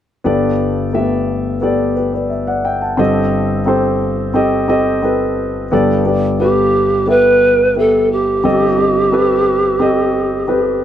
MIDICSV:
0, 0, Header, 1, 3, 480
1, 0, Start_track
1, 0, Key_signature, 1, "major"
1, 0, Tempo, 682283
1, 185, Time_signature, 4, 2, 24, 8
1, 7628, End_track
2, 0, Start_track
2, 0, Title_t, "Grand piano"
2, 0, Program_c, 0, 0
2, 171, Note_on_c, 0, 59, 71
2, 175, Note_on_c, 0, 67, 59
2, 178, Note_on_c, 0, 31, 45
2, 180, Note_on_c, 0, 43, 47
2, 183, Note_on_c, 0, 69, 58
2, 183, Note_on_c, 0, 74, 73
2, 331, Control_c, 0, 64, 127
2, 608, Note_off_c, 0, 59, 0
2, 610, Note_off_c, 0, 67, 0
2, 614, Note_off_c, 0, 69, 0
2, 614, Note_off_c, 0, 74, 0
2, 656, Note_on_c, 0, 57, 53
2, 659, Note_on_c, 0, 67, 52
2, 665, Note_on_c, 0, 76, 69
2, 666, Note_on_c, 0, 69, 55
2, 700, Note_on_c, 0, 59, 56
2, 706, Note_off_c, 0, 57, 0
2, 1092, Note_off_c, 0, 67, 0
2, 1095, Note_off_c, 0, 76, 0
2, 1096, Note_off_c, 0, 69, 0
2, 1113, Note_off_c, 0, 59, 0
2, 1135, Note_on_c, 0, 59, 58
2, 1140, Note_on_c, 0, 67, 54
2, 1143, Note_on_c, 0, 69, 59
2, 1149, Note_on_c, 0, 74, 68
2, 1355, Note_off_c, 0, 59, 0
2, 1357, Note_off_c, 0, 67, 0
2, 1359, Note_off_c, 0, 69, 0
2, 1362, Note_off_c, 0, 74, 0
2, 1382, Note_on_c, 0, 71, 45
2, 1385, Note_on_c, 0, 67, 42
2, 1496, Note_off_c, 0, 71, 0
2, 1499, Note_off_c, 0, 67, 0
2, 1499, Note_on_c, 0, 74, 46
2, 1507, Note_on_c, 0, 71, 38
2, 1616, Note_off_c, 0, 74, 0
2, 1618, Note_on_c, 0, 76, 46
2, 1620, Note_off_c, 0, 71, 0
2, 1735, Note_off_c, 0, 76, 0
2, 1740, Note_on_c, 0, 78, 50
2, 1743, Note_on_c, 0, 74, 46
2, 1856, Note_off_c, 0, 78, 0
2, 1858, Note_off_c, 0, 74, 0
2, 1862, Note_on_c, 0, 79, 54
2, 1866, Note_on_c, 0, 76, 47
2, 1977, Note_off_c, 0, 79, 0
2, 1980, Note_off_c, 0, 76, 0
2, 1981, Note_on_c, 0, 81, 45
2, 1982, Note_on_c, 0, 78, 40
2, 2073, Note_off_c, 0, 31, 0
2, 2074, Note_off_c, 0, 43, 0
2, 2091, Note_on_c, 0, 60, 75
2, 2096, Note_on_c, 0, 67, 63
2, 2099, Note_on_c, 0, 31, 52
2, 2099, Note_on_c, 0, 43, 53
2, 2103, Note_on_c, 0, 69, 69
2, 2106, Note_on_c, 0, 75, 78
2, 2115, Control_c, 0, 64, 0
2, 2211, Note_off_c, 0, 78, 0
2, 2211, Note_off_c, 0, 81, 0
2, 2254, Control_c, 0, 64, 127
2, 2528, Note_off_c, 0, 60, 0
2, 2531, Note_off_c, 0, 67, 0
2, 2534, Note_off_c, 0, 69, 0
2, 2536, Note_off_c, 0, 75, 0
2, 2575, Note_on_c, 0, 60, 67
2, 2577, Note_on_c, 0, 67, 56
2, 2582, Note_on_c, 0, 69, 60
2, 2588, Note_on_c, 0, 72, 73
2, 3010, Note_off_c, 0, 60, 0
2, 3011, Note_off_c, 0, 67, 0
2, 3013, Note_off_c, 0, 69, 0
2, 3016, Note_off_c, 0, 72, 0
2, 3051, Note_on_c, 0, 60, 66
2, 3057, Note_on_c, 0, 67, 61
2, 3059, Note_on_c, 0, 69, 62
2, 3064, Note_on_c, 0, 75, 74
2, 3273, Note_off_c, 0, 60, 0
2, 3276, Note_off_c, 0, 67, 0
2, 3277, Note_off_c, 0, 69, 0
2, 3279, Note_off_c, 0, 75, 0
2, 3294, Note_on_c, 0, 60, 65
2, 3296, Note_on_c, 0, 67, 65
2, 3303, Note_on_c, 0, 69, 60
2, 3303, Note_on_c, 0, 75, 76
2, 3514, Note_off_c, 0, 60, 0
2, 3515, Note_off_c, 0, 67, 0
2, 3519, Note_off_c, 0, 69, 0
2, 3519, Note_off_c, 0, 75, 0
2, 3536, Note_on_c, 0, 60, 53
2, 3540, Note_on_c, 0, 67, 51
2, 3546, Note_on_c, 0, 69, 48
2, 3550, Note_on_c, 0, 71, 64
2, 3970, Note_off_c, 0, 60, 0
2, 3972, Note_off_c, 0, 67, 0
2, 3975, Note_off_c, 0, 69, 0
2, 3977, Note_off_c, 0, 71, 0
2, 3993, Note_off_c, 0, 31, 0
2, 3993, Note_off_c, 0, 43, 0
2, 4020, Note_on_c, 0, 59, 72
2, 4023, Note_on_c, 0, 67, 64
2, 4025, Note_on_c, 0, 43, 54
2, 4026, Note_on_c, 0, 31, 52
2, 4029, Note_on_c, 0, 69, 72
2, 4032, Control_c, 0, 64, 0
2, 4033, Note_on_c, 0, 74, 77
2, 4141, Control_c, 0, 64, 127
2, 4237, Note_off_c, 0, 59, 0
2, 4239, Note_off_c, 0, 67, 0
2, 4241, Note_off_c, 0, 69, 0
2, 4244, Note_off_c, 0, 74, 0
2, 4258, Note_on_c, 0, 59, 58
2, 4262, Note_on_c, 0, 67, 53
2, 4265, Note_on_c, 0, 69, 52
2, 4270, Note_on_c, 0, 74, 57
2, 4476, Note_off_c, 0, 59, 0
2, 4478, Note_off_c, 0, 67, 0
2, 4480, Note_off_c, 0, 69, 0
2, 4482, Note_off_c, 0, 74, 0
2, 4500, Note_on_c, 0, 59, 54
2, 4501, Note_on_c, 0, 67, 52
2, 4510, Note_on_c, 0, 69, 48
2, 4512, Note_on_c, 0, 71, 61
2, 4932, Note_off_c, 0, 59, 0
2, 4933, Note_off_c, 0, 67, 0
2, 4937, Note_off_c, 0, 69, 0
2, 4938, Note_off_c, 0, 71, 0
2, 4971, Note_on_c, 0, 59, 61
2, 4977, Note_on_c, 0, 67, 51
2, 4981, Note_on_c, 0, 69, 51
2, 4986, Note_on_c, 0, 76, 62
2, 5408, Note_off_c, 0, 59, 0
2, 5411, Note_off_c, 0, 67, 0
2, 5413, Note_off_c, 0, 69, 0
2, 5415, Note_off_c, 0, 76, 0
2, 5456, Note_on_c, 0, 59, 48
2, 5461, Note_on_c, 0, 67, 45
2, 5464, Note_on_c, 0, 69, 45
2, 5469, Note_on_c, 0, 76, 48
2, 5890, Note_off_c, 0, 59, 0
2, 5892, Note_off_c, 0, 67, 0
2, 5894, Note_off_c, 0, 69, 0
2, 5896, Note_off_c, 0, 76, 0
2, 5916, Note_off_c, 0, 31, 0
2, 5916, Note_off_c, 0, 43, 0
2, 5935, Note_on_c, 0, 60, 71
2, 5937, Note_on_c, 0, 31, 44
2, 5937, Note_on_c, 0, 67, 64
2, 5941, Note_on_c, 0, 43, 39
2, 5944, Note_on_c, 0, 69, 66
2, 5945, Note_on_c, 0, 75, 76
2, 5953, Control_c, 0, 64, 0
2, 6077, Control_c, 0, 64, 127
2, 6154, Note_off_c, 0, 60, 0
2, 6155, Note_off_c, 0, 67, 0
2, 6159, Note_off_c, 0, 69, 0
2, 6159, Note_off_c, 0, 75, 0
2, 6176, Note_on_c, 0, 60, 47
2, 6178, Note_on_c, 0, 67, 42
2, 6182, Note_on_c, 0, 69, 45
2, 6186, Note_on_c, 0, 75, 57
2, 6395, Note_off_c, 0, 60, 0
2, 6396, Note_off_c, 0, 67, 0
2, 6398, Note_off_c, 0, 69, 0
2, 6400, Note_off_c, 0, 75, 0
2, 6416, Note_on_c, 0, 60, 62
2, 6421, Note_on_c, 0, 67, 55
2, 6424, Note_on_c, 0, 69, 63
2, 6426, Note_on_c, 0, 71, 71
2, 6850, Note_off_c, 0, 60, 0
2, 6852, Note_off_c, 0, 67, 0
2, 6854, Note_off_c, 0, 69, 0
2, 6855, Note_off_c, 0, 71, 0
2, 6891, Note_on_c, 0, 60, 73
2, 6894, Note_on_c, 0, 67, 59
2, 6900, Note_on_c, 0, 69, 63
2, 6906, Note_on_c, 0, 75, 75
2, 7327, Note_off_c, 0, 60, 0
2, 7329, Note_off_c, 0, 67, 0
2, 7332, Note_off_c, 0, 69, 0
2, 7335, Note_off_c, 0, 75, 0
2, 7370, Note_on_c, 0, 60, 52
2, 7372, Note_on_c, 0, 67, 51
2, 7378, Note_on_c, 0, 69, 49
2, 7378, Note_on_c, 0, 71, 65
2, 7628, Note_off_c, 0, 31, 0
2, 7628, Note_off_c, 0, 43, 0
2, 7628, Note_off_c, 0, 60, 0
2, 7628, Note_off_c, 0, 67, 0
2, 7628, Note_off_c, 0, 69, 0
2, 7628, Note_off_c, 0, 71, 0
2, 7628, End_track
3, 0, Start_track
3, 0, Title_t, "Pan flute"
3, 0, Program_c, 1, 75
3, 4509, Note_on_c, 1, 67, 72
3, 4994, Note_on_c, 1, 71, 92
3, 5004, Note_off_c, 1, 67, 0
3, 5468, Note_off_c, 1, 71, 0
3, 5479, Note_on_c, 1, 69, 74
3, 5695, Note_off_c, 1, 69, 0
3, 5714, Note_on_c, 1, 67, 73
3, 7600, Note_off_c, 1, 67, 0
3, 7628, End_track
0, 0, End_of_file